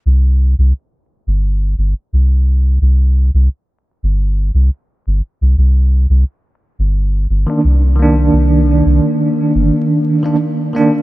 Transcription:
<<
  \new Staff \with { instrumentName = "Tine electric piano" } { \time 4/4 \key c \minor \tempo 4 = 87 r1 | r1 | r2 r8. <ees bes d'>16 r8 <ees bes d'>8~ | <ees bes d'>2~ <ees bes d'>8. <ees bes d'>16 r8 <ees bes d'>8 | }
  \new Staff \with { instrumentName = "Sub bass" } { \clef bass \time 4/4 \key c \minor c,8. c,16 r8. g,,8. g,,16 r16 c,4 | c,8. c,16 r8. g,,8. c,16 r8 g,,16 r16 c,16 | c,8. c,16 r8. g,,8. g,,16 r16 c,4 | c,8. c,16 r8. g,,16 r2 | }
>>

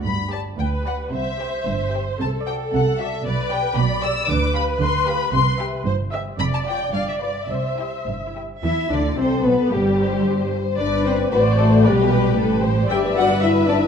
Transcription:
<<
  \new Staff \with { instrumentName = "Violin section" } { \time 2/4 \key g \major \tempo 4 = 113 b''8 a''8 g''8 fis''8 | e''4. r8 | a''8 g''8 fis''8 e''8 | d''8 g''8 b''8 e'''8 |
\key c \major d'''8 b''8 c'''8 b''8 | c'''8 r4. | b''16 a''16 g''8 f''16 e''16 d''8 | c''4 r4 |
r4 a'4 | g'8 c''4. | b'4 fis'4 | g'8 b'8 a'8 g'8 |
\key e \dorian b'2 | }
  \new Staff \with { instrumentName = "Viola section" } { \time 2/4 \key g \major << { r4 b'4 | c''2 | a'2 | b'4 d''4 |
\key c \major b'2~ | b'4 c''8 e''8 | d''4 d''4 | e''4. r8 |
e'8 d'8 c'8 b8 | g4. r8 | d''4 c''4 | b'2 |
\key e \dorian e''2 | } \\ { r2 | r2 | r2 | r2 |
r2 | r2 | r2 | r2 |
r2 | r2 | b'4 d''4 | d''8 b'8 b'8 c''8 |
d''4 e''4 | } >> }
  \new Staff \with { instrumentName = "Violin section" } { \time 2/4 \key g \major r8 <g' d''>8 r8 <g' d''>8 | r8 <g' c''>8 r8 <g' c''>8 | r8 <fis' d''>8 r8 <fis' d''>8 | r8 <g' d''>8 r8 <g' d''>8 |
\key c \major r8 <g' f''>8 r8 <g' f''>8 | r8 <g' e''>8 r8 <g' e''>8 | r8 <f' d''>8 r8 <f' b'>8 | r8 <e' g'>8 r8 <e' g'>8 |
e''8 d''8 c''8 b'8 | g'4. r8 | d''8 c''8 b'8 a'8 | g'4. r8 |
\key e \dorian g''8 fis''8 e''8 d''8 | }
  \new Staff \with { instrumentName = "French horn section" } { \time 2/4 \key g \major r2 | r2 | r2 | r2 |
\key c \major r2 | r2 | r2 | r2 |
e'8 d'8 c'8 b8 | g4. r8 | d'8 c'8 b8 a8 | g4. r8 |
\key e \dorian g'8 fis'8 e'8 d'8 | }
  \new Staff \with { instrumentName = "Cello section" } { \clef bass \time 2/4 \key g \major g,4 d,4 | c4 g,4 | c4 c4 | b,4 b,4 |
\key c \major d4 d4 | c4 g,4 | f,4 g,4 | c4 g,4 |
e8 d8 c8 b,8 | g,4. r8 | g,4 a,4 | b,4 a,4 |
\key e \dorian g,2 | }
  \new Staff \with { instrumentName = "Double bass section" } { \clef bass \time 2/4 \key g \major g,,4 d,4 | c,4 g,,4 | c,4 c,4 | b,,4 b,,4 |
\key c \major d,4 d,4 | c,4 g,,4 | f,,4 g,,4 | c,4 g,,4 |
e,8 d,8 c,8 b,,8 | g,,4. r8 | g,,4 a,,4 | b,,4 a,,4 |
\key e \dorian g,,2 | }
>>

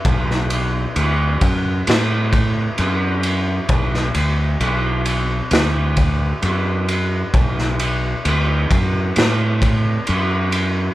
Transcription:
<<
  \new Staff \with { instrumentName = "Fingered electric bass" } { \clef bass \time 4/4 \key b \minor \tempo 4 = 66 b,,4 d,8 fis,8 a,4 fis,4 | b,,8 d,8 b,,4 d,4 fis,4 | b,,4 d,8 fis,8 a,4 fis,4 | }
  \new DrumStaff \with { instrumentName = "Drums" } \drummode { \time 4/4 <bd cymr>16 sn16 cymr8 cymr8 <bd cymr>8 <cymr sn>8 <bd cymr>8 cymr8 cymr8 | <bd cymr>16 sn16 cymr8 cymr8 cymr8 <cymr sn>8 <bd cymr>8 cymr8 cymr8 | <bd cymr>16 sn16 cymr8 cymr8 <bd cymr>8 <cymr sn>8 <bd cymr>8 cymr8 cymr8 | }
>>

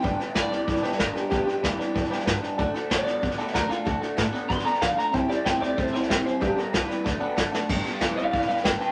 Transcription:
<<
  \new Staff \with { instrumentName = "Clean electric guitar" } { \time 4/4 \key g \major \tempo 4 = 188 g''8 r8 d''2 bes'8 g'8 | g'4 r2. | r4 d''2 bes'8 f'8 | fis'4 r4 c'''8 bes''8 f''8 bes''8 |
g''8 d''8 g''8 d''8 c''8 d''8 cis''8 c''8 | g'8 bes'8 b'2 r4 | r4. <d'' f''>8 <d'' f''>8 <d'' f''>8 <b' g''>8 <b' g''>8 | }
  \new Staff \with { instrumentName = "Honky-tonk piano" } { \time 4/4 \key g \major <b' d'' g''>8 <b' d'' g''>8 <b' d'' g''>8 <b' d'' g''>8 <b' d'' g''>8 <b' d'' g''>8 <b' d'' g''>8 <b' d'' g''>8 | <b' d'' g''>8 <b' d'' g''>8 <b' d'' g''>8 <b' d'' g''>8 <b' d'' g''>8 <b' d'' g''>8 <b' d'' g''>8 <b' d'' g'' b''>8 | <a' d'' fis''>8 <a' d'' fis''>8 <a' d'' fis''>8 <a' d'' fis''>8 <a' d'' fis''>8 <a' d'' fis''>8 <a' d'' fis''>8 <a' d'' fis''>8 | <a' d'' fis''>8 <a' d'' fis''>8 <a' d'' fis''>8 <a' d'' fis''>8 <a' d'' fis''>8 <a' d'' a''>8 <a' d'' fis''>8 <a' d'' fis''>8 |
<c'' e'' g''>8 <c'' e'' g''>8 <c'' e'' a''>8 <c'' e'' g''>8 <c'' e'' g''>8 <c'' e'' g''>8 <c'' e'' g''>8 <c'' e'' g''>8 | <b' d'' g''>8 <b' d'' fis''>8 <b' d'' g''>8 <b' d'' g''>8 <a' d'' fis''>8 <a' d'' fis''>8 <a' d'' fis''>8 <a' d'' fis''>8 | r1 | }
  \new Staff \with { instrumentName = "Steel-string acoustic guitar" } { \time 4/4 \key g \major <g, d g b d' g'>8 <g b d' g'>8 <g, d g b d' g'>8 <g b d' g'>8 <g b d' g'>8 <g b d' g'>8 <g, d g b d' g'>8 <g b d' g'>8 | <g, d g b d' g'>8 <g b d' g'>8 <g, d g b d' g'>8 <g b d' g'>8 <g b d' g'>8 <g b d' g'>8 <g, d g b d' g'>8 <g b d' g'>8 | <d a d' fis' a'>8 <d' fis' a'>8 <d a d' fis' a'>8 <d' fis' a'>8 <a d' fis' a'>8 <d' fis' a'>8 <d a d' fis' a'>8 <d' fis' a'>8 | <d a d' fis' a'>8 <d' fis' a'>8 <d a d' fis' a'>8 <d' fis' a'>8 <a d' fis' a'>8 <d' fis' a'>8 <d a d' fis' a'>8 <d' fis' a'>8 |
<c g c' e' g'>8 <c' e' g'>8 <c g c' e' g'>8 <c' e' g'>8 <g c' e' g'>8 <c' e' g'>8 <c g c' e' g'>8 <c' e' g'>8 | <g, d g b d' g'>8 <g b d' g'>8 <g, d g b d' g'>8 <g b d' g'>8 <a d' fis' a'>8 <d' fis' a'>8 <d a d' fis' a'>8 <d' fis' a'>8 | <g, d g b d' g'>8 <g b d' g'>8 <g, d g b d' g'>8 <g b d' g'>8 <g b d' g'>8 <g b d' g'>8 <g, d g b d' g'>8 <g b d' g'>8 | }
  \new Staff \with { instrumentName = "Clean electric guitar" } { \clef bass \time 4/4 \key g \major <g, d>8 <g, d>8 <g, e>8 <g, e>8 <g, e>8 <g, e>8 <g, d>8 <g, d>8 | <g, d>8 <g, d>8 <g, e>8 <g, e>8 <g, e>8 <g, e>8 <g, d>8 <g, d>8 | <d a>8 <d a>8 <d b>8 <d b>8 <d b>8 <d b>8 <d a>8 <d a>8 | <d a>8 <d a>8 <d b>8 <d b>8 <d b>8 <d b>8 <d a>8 <d a>8 |
<c g>8 <c g>8 <c a>8 <c a>8 <c a>8 <c a>8 <c g>8 <c g>8 | <g, d>8 <g, d>8 <g, e>8 <g, e>8 <d a>8 <d b>8 <d a>8 <d a>8 | <g, d>8 <g, d>8 <g, e>8 <g, e>8 <g, e>8 <g, e>8 g,8 <g, d>8 | }
  \new Staff \with { instrumentName = "Upright bass" } { \clef bass \time 4/4 \key g \major g,,8 r8 d,8 c,8 b,,8 g,,8 g,,8 r8 | g,,8 r8 d,8 r8 e,8 r8 g,8 r8 | d,8 r8 a,8 g,8 r8 d,8 d,8 r8 | d,8 r8 a,8 r8 b,8 r8 d8 r8 |
c,8 r8 g,8 e,8 e,8 c,8 fis,,8 r8 | g,,8 r8 c,8 r8 d,8 r8 fis,,8 r8 | g,,8 r8 d,8 c,8 b,,8 g,,8 g,,8 r8 | }
  \new DrumStaff \with { instrumentName = "Drums" } \drummode { \time 4/4 <bd sn>8 sn8 <hhp bd sn>8 sn8 <bd sn>16 sn16 sn16 sn16 <hhp bd sn>8 sn8 | <bd sn>8 sn8 <hhp bd sn>8 sn8 <bd sn>16 sn16 sn16 sn16 <hhp bd sn>8 sn8 | <bd sn>8 sn8 <hhp bd sn>8 sn8 <bd sn>16 sn16 sn16 sn16 <hhp bd sn>8 sn8 | <bd sn>8 sn8 <hhp bd sn>8 sn8 <bd sn>16 sn16 sn16 sn16 <hhp bd sn>8 sn8 |
<bd sn>8 sn8 <hhp bd sn>8 sn8 <bd sn>16 sn16 sn16 sn16 <hhp bd sn>8 sn8 | <bd sn>8 sn8 <hhp bd sn>8 sn8 <bd sn>4 <hhp bd sn>8 sn8 | <cymc bd sn>8 sn8 <hhp bd sn>8 sn8 <bd sn>16 sn16 sn16 sn16 <hhp bd sn>8 sn8 | }
>>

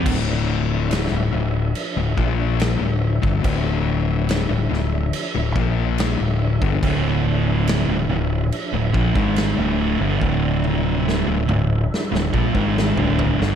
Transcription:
<<
  \new Staff \with { instrumentName = "Tonewheel organ" } { \time 4/4 \key d \minor \tempo 4 = 71 <f d' e''>1~ | <f d' e''>1~ | <f d' e''>1~ | <f d' e''>1 | }
  \new Staff \with { instrumentName = "Distorted electric guitar" } { \clef bass \time 4/4 \key d \minor <d, a, d>4~ <d, a, d>16 <d, a,>16 <d, a,>8 r16 <d, a,>16 <bes, f bes>8. <d, a,>8 <g, d>16 | <d, a, d>4~ <d, a, d>16 <d, a,>16 <d, a,>8 r16 <d, a,>16 <bes, f bes>8. <d, a,>8 <g, d>16 | <d, a, d>4~ <d, a, d>16 <d, a,>16 <d, a,>8 r16 <d, a,>16 <bes, f>16 <gis, ees gis>8 <d, a, d>8 <g, d>16 | <d, a, d>4~ <d, a, d>16 <d, a,>16 <d, a,>8 r16 <d, a,>16 <bes, f>16 <gis, ees gis>8 <d, a, d>8 <g, d>16 | }
  \new Staff \with { instrumentName = "Distorted electric guitar" } { \clef bass \time 4/4 \key d \minor r1 | r1 | <d, a, d>4~ <d, a, d>16 <d, a,>16 <d, a,>8 r16 <d, a,>16 <bes, f>16 <gis, ees gis>8 <d, a, d>8 <g, d>16 | <d, a, d>4~ <d, a, d>16 <d, a,>16 <d, a,>8 r16 <d, a,>16 <bes, f>16 <gis, ees gis>8 <d, a, d>8 <g, d>16 | }
  \new Staff \with { instrumentName = "Fingered electric bass" } { \clef bass \time 4/4 \key d \minor d,,4~ d,,16 d,,16 d,,8 r16 d,,16 bes,,8. d,,8 g,,16 | d,,4~ d,,16 d,,16 d,,8 r16 d,,16 bes,,8. d,,8 g,,16 | d,,4~ d,,16 d,,16 d,,8 r16 d,,16 bes,,16 gis,,8 d,,8 g,,16 | d,,4~ d,,16 d,,16 d,,8 r16 d,,16 bes,,16 gis,,8 d,,8 g,,16 | }
  \new DrumStaff \with { instrumentName = "Drums" } \drummode { \time 4/4 <cymc bd>4 <cymc sn>4 cymc8 bd8 <cymc sn>8. bd16 | <cymc bd>4 <cymc sn>8 sn8 cymc8 bd8 <cymc sn>8. bd16 | <cymc bd>4 <cymc sn>4 cymc8 bd16 bd16 <cymc sn>4 | bd8 tommh8 sn8 toml8 sn16 sn16 bd16 bd16 sn16 tomfh16 tomfh16 sn16 | }
>>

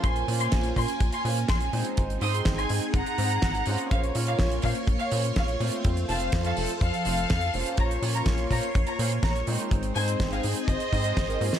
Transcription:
<<
  \new Staff \with { instrumentName = "Violin section" } { \time 4/4 \key bes \minor \tempo 4 = 124 <aes'' c'''>8. <aes'' c'''>8. <aes'' c'''>8. <aes'' c'''>8. <aes'' c'''>8. r16 | r8 <c''' ees'''>8. <aes'' c'''>8. <ges'' bes''>4.~ <ges'' bes''>16 r16 | <des'' f''>8. <des'' f''>8. <des'' f''>8. <des'' f''>8. <des'' f''>8. r16 | r8 <f'' a''>8. <a' f''>8. <a' f''>4.~ <a' f''>16 r16 |
<des'' bes''>8. <des'' bes''>8. <des'' bes''>8. <des'' bes''>8. <des'' bes''>8. r16 | r8 <c'' aes''>8. <aes' f''>8. <c'' ees''>4.~ <c'' ees''>16 r16 | }
  \new Staff \with { instrumentName = "String machine" } { \time 4/4 \key bes \minor << { <bes des' c'''>1 | <ees' aes'>1 | <bes des'' c'''>1 | <f a' c''>1 |
<bes des'' c'''>1 | <ees' aes'>1 | } \\ { f'1 | c'1 | f'1~ | f'1~ |
f'1 | c'1 | } >> }
  \new Staff \with { instrumentName = "Analog polysynth" } { \time 4/4 \key bes \minor <bes des' f' c''>8 <bes des' f' c''>4 <bes des' f' c''>16 r8. <bes des' f' c''>16 r8. <aes c' ees' c''>8~ | <aes c' ees' c''>8 <aes c' ees' c''>4 <aes c' ees' c''>16 r8. <aes c' ees' c''>16 r8. <bes des' f' c''>8~ | <bes des' f' c''>8 <bes des' f' des''>4 <bes des' f' c''>16 r8. <bes des' f' c''>16 r8. <a c' f' c''>8~ | <a c' f' c''>8 <a c' f' c''>4 <a c' f' c''>16 r8. <a c' f' c''>16 r8. <bes des' f' c''>8~ |
<bes des' f' c''>8 <bes des' f' des''>4 <bes des' f' c''>16 r8. <bes des' f' c''>16 r8. <aes c' ees' c''>8~ | <aes c' ees' c''>8 <aes c' ees' c''>4 <aes c' ees' c''>16 r8. <aes c' ees' c''>16 <aes c' ees' c''>16 r16 <aes c' ees' bes'>16 <bes des' f' c''>8 | }
  \new Staff \with { instrumentName = "Analog synth bass" } { \clef bass \time 4/4 \key bes \minor bes,,8 bes,8 bes,,8 bes,8 bes,,8 bes,8 bes,,8 bes,8 | aes,,8 aes,8 aes,,8 aes,8 aes,,8 aes,8 aes,,8 aes,8 | bes,,8 bes,8 bes,,8 bes,8 bes,,8 bes,8 bes,,8 bes,8 | f,8 f,,8 f,8 f,,8 f,8 f,,8 f,8 f,,8 |
bes,,8 bes,8 bes,,8 bes,8 bes,,8 bes,8 bes,,8 bes,8 | aes,,8 aes,8 aes,,8 aes,8 aes,,8 aes,8 aes,,8 aes,8 | }
  \new DrumStaff \with { instrumentName = "Drums" } \drummode { \time 4/4 <hh bd>16 hh16 hho16 hh16 <hh bd sn>16 hh16 <hho bd>16 hh16 <hh bd>16 hh16 hho16 hh16 <hh bd sn>16 hh16 hho16 hh16 | <hh bd>16 hh16 hho16 hh16 <hh bd sn>16 hh16 hho16 hh16 <hh bd>16 hh16 hho16 hh16 <hh bd sn>16 hh16 hho16 hh16 | <hh bd>16 hh16 hho16 hh16 <hh bd sn>16 hh16 <hho bd>16 hh16 <hh bd>16 hh16 hho16 hh16 <hh bd sn>16 hh16 hho16 hh16 | <hh bd>16 hh16 hho16 hh16 <hh bd sn>16 hh16 hho16 hh16 <hh bd>16 hh16 hho16 hh16 <hh bd sn>16 hh16 hho16 hh16 |
<hh bd>16 hh16 hho16 hh16 <hh bd sn>16 hh16 <hho bd>16 hh16 <hh bd>16 hh16 hho16 hh16 <hh bd sn>16 hh16 hho16 hh16 | <hh bd>16 hh16 hho16 hh16 <hh bd sn>16 hh16 hho16 hh16 <hh bd>16 hh16 <hho bd>16 hh16 <hh bd sn>16 hh16 hho16 <hh sn>16 | }
>>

